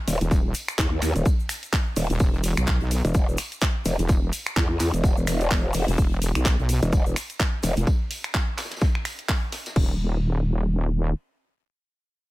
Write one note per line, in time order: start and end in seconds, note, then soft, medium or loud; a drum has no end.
0.07 0.19 D#1 loud
0.07 open hi-hat loud
0.07 ride medium
0.07 tambourine medium
0.07 shaker loud
0.21 0.53 D#1 loud
0.21 closed hi-hat soft
0.21 closed hi-hat medium
0.21 shaker soft
0.31 kick loud
0.31 closed hi-hat medium
0.31 tambourine medium
0.31 shaker medium
0.54 open hi-hat loud
0.54 ride medium
0.54 tambourine medium
0.54 shaker loud
0.68 finger snap medium
0.68 closed hi-hat medium
0.68 shaker soft
0.78 1.00 D#2 loud
0.78 kick loud
0.78 snare loud
0.78 clap loud
0.78 closed hi-hat soft
0.78 tambourine medium
0.78 shaker medium
1.01 1.13 D#2 medium
1.01 clap soft
1.01 open hi-hat loud
1.01 ride medium
1.01 tambourine medium
1.01 shaker loud
1.16 1.24 D#1 loud
1.16 closed hi-hat medium
1.16 shaker soft
1.25 kick loud
1.25 closed hi-hat medium
1.25 tambourine medium
1.25 shaker medium
1.40 shaker soft
1.49 finger snap medium
1.49 open hi-hat loud
1.49 ride medium
1.49 tambourine medium
1.49 shaker loud
1.63 closed hi-hat medium
1.63 shaker soft
1.73 kick loud
1.73 snare loud
1.73 clap loud
1.73 open hi-hat medium
1.73 tambourine medium
1.73 shaker medium
1.96 2.08 D#1 medium
1.96 open hi-hat loud
1.96 open hi-hat medium
1.96 ride medium
1.96 shaker loud
2.10 2.19 D#1 medium
2.10 closed hi-hat medium
2.10 shaker soft
2.19 2.55 E1 medium
2.19 kick loud
2.19 closed hi-hat medium
2.19 tambourine medium
2.19 shaker soft
2.34 closed hi-hat soft
2.43 open hi-hat loud
2.43 ride medium
2.43 tambourine medium
2.43 shaker loud
2.57 2.79 B1 loud
2.57 finger snap medium
2.57 closed hi-hat medium
2.57 shaker soft
2.67 kick loud
2.67 snare loud
2.67 clap loud
2.67 closed hi-hat soft
2.67 tambourine medium
2.67 shaker medium
2.81 3.03 B1 loud
2.81 closed hi-hat soft
2.91 open hi-hat loud
2.91 ride medium
2.91 tambourine medium
2.91 shaker loud
3.05 3.37 E1 loud
3.05 closed hi-hat medium
3.05 shaker soft
3.14 kick loud
3.14 closed hi-hat medium
3.14 tambourine medium
3.14 shaker medium
3.29 shaker soft
3.37 finger snap medium
3.37 open hi-hat loud
3.37 ride medium
3.37 tambourine medium
3.37 shaker loud
3.52 closed hi-hat medium
3.52 shaker soft
3.61 kick loud
3.61 snare loud
3.61 clap loud
3.61 closed hi-hat medium
3.61 tambourine medium
3.61 shaker medium
3.85 3.97 E1 loud
3.85 open hi-hat loud
3.85 ride medium
3.85 tambourine medium
3.85 shaker medium
3.99 4.31 E1 loud
3.99 closed hi-hat medium
3.99 closed hi-hat soft
3.99 shaker soft
4.09 kick loud
4.09 closed hi-hat medium
4.09 tambourine medium
4.09 shaker medium
4.33 open hi-hat medium
4.33 ride medium
4.33 tambourine medium
4.33 shaker medium
4.46 finger snap medium
4.46 closed hi-hat medium
4.46 shaker soft
4.56 4.78 E2 loud
4.56 kick loud
4.56 snare loud
4.56 clap loud
4.56 closed hi-hat medium
4.56 tambourine medium
4.56 shaker soft
4.79 4.91 E2 loud
4.79 clap soft
4.79 open hi-hat loud
4.79 ride medium
4.79 tambourine medium
4.79 shaker loud
4.94 5.26 E1 loud
4.94 closed hi-hat medium
4.94 shaker soft
5.04 kick loud
5.04 closed hi-hat medium
5.04 tambourine medium
5.04 shaker medium
5.17 shaker soft
5.27 5.73 E1 loud
5.27 finger snap medium
5.27 open hi-hat loud
5.27 ride medium
5.27 tambourine medium
5.27 shaker medium
5.40 closed hi-hat medium
5.40 shaker soft
5.51 kick loud
5.51 snare loud
5.51 clap loud
5.51 open hi-hat medium
5.51 tambourine medium
5.51 shaker soft
5.73 5.86 E1 loud
5.73 open hi-hat loud
5.73 open hi-hat medium
5.73 ride medium
5.73 shaker medium
5.88 5.97 E1 loud
5.88 closed hi-hat medium
5.88 shaker soft
5.98 6.33 E1 medium
5.98 kick loud
5.98 closed hi-hat medium
5.98 tambourine medium
5.98 shaker medium
6.12 closed hi-hat soft
6.22 open hi-hat medium
6.22 ride medium
6.22 tambourine medium
6.22 shaker medium
6.35 6.57 B1 loud
6.35 finger snap medium
6.35 closed hi-hat medium
6.35 shaker soft
6.45 kick loud
6.45 snare loud
6.45 clap loud
6.45 closed hi-hat medium
6.45 tambourine medium
6.45 shaker medium
6.59 6.80 B1 loud
6.59 closed hi-hat soft
6.69 open hi-hat loud
6.69 ride medium
6.69 tambourine medium
6.69 shaker loud
6.83 7.15 E1 loud
6.83 closed hi-hat medium
6.83 shaker soft
6.93 kick loud
6.93 closed hi-hat medium
6.93 tambourine medium
6.93 shaker soft
7.06 shaker soft
7.16 finger snap medium
7.16 open hi-hat loud
7.16 ride medium
7.16 tambourine medium
7.16 shaker medium
7.30 closed hi-hat medium
7.30 shaker soft
7.39 kick loud
7.39 snare loud
7.39 clap loud
7.39 closed hi-hat medium
7.39 tambourine medium
7.39 shaker medium
7.63 7.75 E1 loud
7.63 snare loud
7.63 open hi-hat loud
7.63 ride medium
7.63 tambourine medium
7.63 shaker medium
7.77 7.86 E1 loud
7.77 closed hi-hat medium
7.77 closed hi-hat soft
7.77 shaker soft
7.87 kick loud
7.87 closed hi-hat medium
7.87 tambourine medium
8.11 open hi-hat loud
8.11 ride medium
8.11 tambourine medium
8.24 finger snap medium
8.24 closed hi-hat medium
8.34 kick loud
8.34 snare loud
8.34 clap loud
8.34 closed hi-hat medium
8.34 tambourine medium
8.57 snare loud
8.57 clap soft
8.57 open hi-hat loud
8.57 ride medium
8.57 tambourine medium
8.64 snare medium
8.64 tambourine medium
8.71 snare loud
8.71 closed hi-hat medium
8.71 tambourine medium
8.77 snare medium
8.77 tambourine medium
8.81 kick loud
8.81 snare loud
8.81 closed hi-hat medium
8.81 tambourine medium
8.95 finger snap medium
9.05 finger snap medium
9.05 open hi-hat loud
9.05 ride medium
9.05 tambourine medium
9.19 closed hi-hat medium
9.28 kick loud
9.28 snare loud
9.28 clap loud
9.28 open hi-hat medium
9.28 tambourine medium
9.52 snare loud
9.52 open hi-hat loud
9.52 ride medium
9.52 tambourine medium
9.66 snare loud
9.66 closed hi-hat medium
9.66 tambourine medium
9.76 11.14 D#1 medium
9.76 kick loud
9.76 crash medium